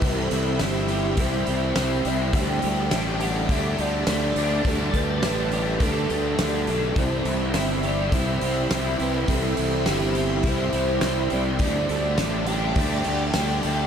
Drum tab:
HH |oooooooo|oooooooo|oooooooo|oooooooo|
SD |--o---o-|--o---o-|--o---o-|--o---o-|
BD |o---o---|o---o---|oo--o---|o---o---|

HH |oooooooo|oooooooo|
SD |--o---o-|--o---o-|
BD |o---o---|o---o---|